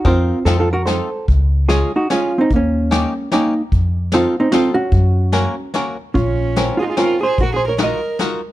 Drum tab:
HH |x-x-x-|x-x-x-|x-x-x-|x-x-x-|
SD |--o-o-|--o-o-|--o-o-|--o-o-|
BD |o-----|o-----|o-----|o-----|

HH |x-x-x-|x-x-x-|x-x-x-|
SD |--o-o-|--o-o-|--o-o-|
BD |o-----|o-----|o-----|